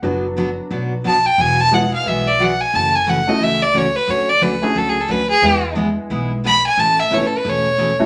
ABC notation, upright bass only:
X:1
M:4/4
L:1/8
Q:"Swing" 1/4=178
K:Emix
V:1 name="Upright bass" clef=bass
F,,,4 B,,,4 | E,,,4 B,,,4 | F,,,4 C,,4 | D,,4 C,,2 D,,2 |
E,,4 B,,,4 | A,,,4 E,,,4 |]